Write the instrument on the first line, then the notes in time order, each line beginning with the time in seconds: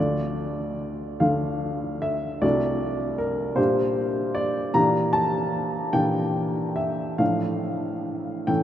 upright piano
Already playing: D2 A3 D4 F4 D5
1.20 D2 A3 D4 F4 F5
2.02 E5
2.42 C2 A3 D4 F#4 D5
3.18 A#4
3.56 A#2 G3 D4 G4 C5
4.35 D5
4.74 A#2 E3 D4 G4 A#5
5.13 A5
5.93 A#2 E3 D4 G4 G5
6.76 E5
7.18 A2 F3 D4 A4 F5
8.47 A2 E3 C#4 A4 G5